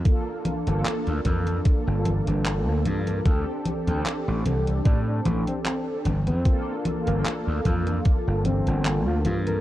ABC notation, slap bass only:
X:1
M:4/4
L:1/16
Q:"Swing 16ths" 1/4=75
K:Gm
V:1 name="Slap bass" clef=bass
z3 G,,, z D,, F,,2 z G,,,2 G,,,2 D,, G,,2 | D,, z2 D,, z A,,, C,,2 A,,2 A,,, z3 G,,, F,, | z3 G,,, z D,, F,,2 z G,,,2 G,,,2 D,, G,,2 |]